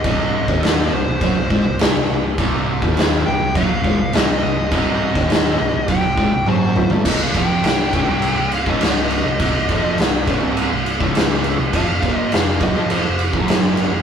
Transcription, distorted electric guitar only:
X:1
M:4/4
L:1/16
Q:1/4=103
K:Cm
V:1 name="Distorted electric guitar" clef=bass
[C,,C,]3 [E,,E,]3 C,, C,, [^F,,^F,] C,, [A,,A,] C,, [C,,C,] C,, C,,2 | [C,,C,]3 [E,,E,]3 C,, C,, [^F,,^F,] C,, [A,,A,] C,, [C,,C,] C,, C,,2 | [C,,C,]3 [E,,E,]3 C,, C,, [^F,,^F,] C,, [A,,A,] C,, [F,,F,]3 [G,,G,] | [C,,C,] C,, [F,,F,]2 C,,2 [_D,,_D,] [C,,C,]2 C,,2 [D,,D,]4 C,, |
[C,,C,] C,, [F,,F,]2 C,,2 [_D,,_D,] [C,,C,]2 C,,2 [D,,D,]4 C,, | [F,,F,] F,, [B,,B,]2 F,,2 [_G,,_G,] [F,,F,]2 F,,2 [G,,G,]4 F,, |]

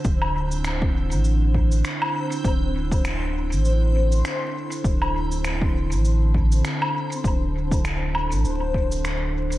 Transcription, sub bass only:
X:1
M:4/4
L:1/16
Q:"Swing 16ths" 1/4=100
K:C
V:1 name="Sub bass" clef=bass
D,,,6- D,,, A,,,4- A,,, z4 | D,,,6- D,,, A,,,4- A,,, z4 | D,,,6- D,,, A,,,4- A,,, z4 | D,,,6- D,,, A,,, D,,,8 |]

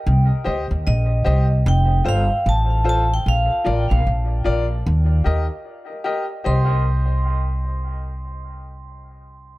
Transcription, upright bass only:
X:1
M:4/4
L:1/16
Q:"Swing 16ths" 1/4=75
K:Cdor
V:1 name="Upright bass" clef=bass
C,, z D,, E,, B,,,2 C,,2 F,,,2 G,,, z A,,,4 | B,,, z A,,, B,,, B,,,2 B,,,2 E,,2 E,, z4 z | C,,16 |]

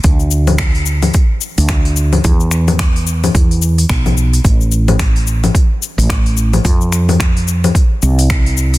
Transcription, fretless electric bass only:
X:1
M:4/4
L:1/16
Q:"Swing 16ths" 1/4=109
K:Ephr
V:1 name="Fretless electric bass" clef=bass
D,,6- D,, z4 D,,4 z | E,,6- E,, z E,,3 z B,,,3 z | A,,,6- A,,, z4 A,,,4 z | F,,6- F,, z3 C,,4- C,, z |]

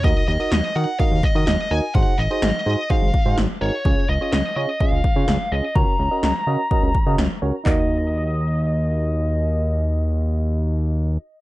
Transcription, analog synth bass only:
X:1
M:4/4
L:1/16
Q:1/4=126
K:Ebm
V:1 name="Analog synth bass" clef=bass
E,, z E,, z E,, z E, z2 E,, z E, E,, z E,, z | A,,, z A,,, z A,,, z A,, z2 A,,, z A,, A,,, z A,,, z | D,, z D,, z D,, z D, z2 D,, z D, D,, z D,, z | D,, z D,, z D,, z D, z2 D,, z D, D,, z D,, z |
E,,16- | E,,16 |]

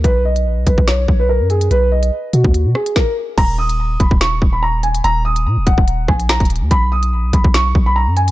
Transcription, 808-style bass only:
X:1
M:4/4
L:1/16
Q:1/4=144
K:Ebm
V:1 name="808-style bass" clef=bass
=B,,,4 _B,,, =B,,, B,,, B,,,3 B,,,3 ^F,,3 | =B,,,4 z2 =B,, ^D,,2 B,, z6 | E,,,6 E,,, E,,,3 E,,,6 | E,,,4 B,, E,,, E,,, E,,,3 B,,,3 E,,,2 E,, |
=B,,,4 _B,,, =B,,, B,,, B,,,3 B,,,3 ^F,,3 |]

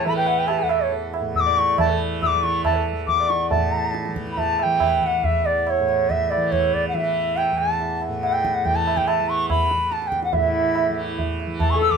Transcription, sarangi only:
X:1
M:4/4
L:1/16
Q:1/4=140
K:none
V:1 name="Sarangi"
A B3 G A4 z4 d3- | d A2 z2 d4 A2 z2 d3- | d z12 z3 | z16 |
z16 | z16 | z E6 z6 A3 |]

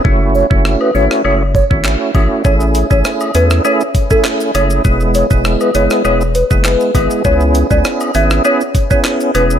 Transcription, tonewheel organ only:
X:1
M:4/4
L:1/16
Q:1/4=100
K:F#m
V:1 name="Tonewheel organ"
[A,CEF]3 [A,CEF]3 [A,CEF]2 [A,CEF] z2 [A,CEF]3 [A,CEF]2 | [A,CEG]3 [A,CEG]3 [A,CEG]2 [A,CEG] z2 [A,CEG]3 [A,CEG]2 | [G,B,EG]3 [G,B,EG]3 [G,B,EG]2 [G,B,EG] z2 [G,B,EG]3 [G,B,EG]2 | [B,CEG]3 [B,CEG]3 [B,CEG]2 [B,CEG] z2 [B,CEG]3 [B,CEG]2 |]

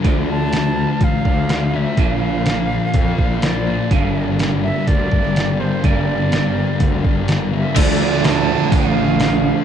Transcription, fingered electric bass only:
X:1
M:4/4
L:1/8
Q:1/4=124
K:Dm
V:1 name="Fingered electric bass" clef=bass
D,,4 A,,, D,,3 | B,,,4 F,, B,,,3 | G,,,4 D,, G,,,3 | G,,,4 D,, G,,,3 |
D,,4 A,,,4 |]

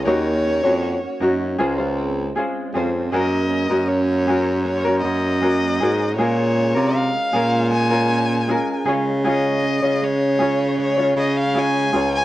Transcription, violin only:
X:1
M:4/4
L:1/16
Q:1/4=78
K:Gblyd
V:1 name="Violin"
d6 z8 z2 | e4 d4 d2 e6 | d4 f4 a6 z2 | e4 d4 d2 e f a3 a |]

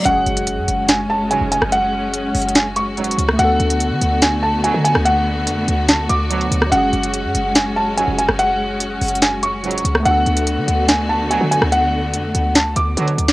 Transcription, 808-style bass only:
X:1
M:4/4
L:1/16
Q:1/4=144
K:F#m
V:1 name="808-style bass" clef=bass
F,,,2 F,,,3 F,, F,,,6- F,,, ^E,,,2 F,,,- | F,,,6 F,,,8 C,,2 | D,,2 D,,3 D, D,,6- D,, D,2 D,,- | D,,4 ^E,,2 D,,4 D,,4 D,,2 |
F,,,2 F,,,3 F,, F,,,6- F,,, ^E,,,2 F,,,- | F,,,6 F,,,8 C,,2 | D,,2 D,,3 D, D,,6- D,, D,2 D,,- | D,,4 ^E,,2 D,,4 D,,2 D,2 D,,2 |]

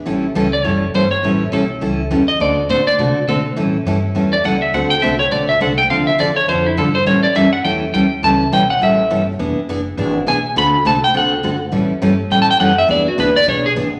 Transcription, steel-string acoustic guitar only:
X:1
M:4/4
L:1/8
Q:"Swing" 1/4=206
K:Amix
V:1 name="Steel-string acoustic guitar"
[E,G,CEA] z [E,G,CEA] z [E,G,CEA] z [E,G,CEA] z | [E,G,CEA] z [E,G,CEA] z [E,G,CEA] z [E,G,CEA] z | [D,A,=CFA] z [D,A,CFA] z [D,A,CFA] z [D,A,CFA] z | [E,G,CEA] z [E,G,CEA] z [E,G,CEA] z [E,G,CEA] z |
[D,A,=CFA] z [D,A,CFA] z [D,A,CFA] z [D,A,CFA] z | [D,=F,=CDA] z [D,F,CDA] z [D,F,CDA] z [D,F,CDA] z | [E,G,CEA] z [E,G,CEA] z [E,G,CEA] z [E,G,CEA] z | [E,G,CEA] z [E,G,CEA] z [E,G,CEA] z [E,G,CEA] z |
[E,B,D^G] z [E,B,DG] z [E,B,DG] z [E,B,DG] z | [D,A,=CFA] z [D,A,CFA] z [D,A,CFA] z [D,A,CFA] z | [E,G,CEA] z [E,G,CEA] z [E,G,CEA] z [E,G,CEA] z | [E,B,D^G] z [E,B,DG] z [E,B,DG] z [E,B,DG] z |]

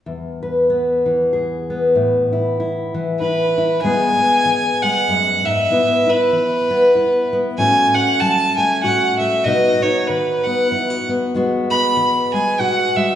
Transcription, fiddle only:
X:1
M:3/4
L:1/8
Q:"Swing" 1/4=96
K:E
V:1 name="Fiddle"
z6 | z4 B2 | g3 f2 e- | e B4 z |
g f a g f e | d c B f2 z | z b2 g f e |]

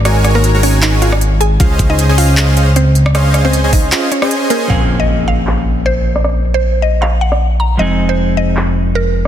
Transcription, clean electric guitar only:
X:1
M:4/4
L:1/8
Q:"Swing 16ths" 1/4=155
K:Bbm
V:1 name="Clean electric guitar"
z8 | z8 | z8 | [F,B,CDA]8- |
[F,B,CDA]8 | [F,A,CEA]8 |]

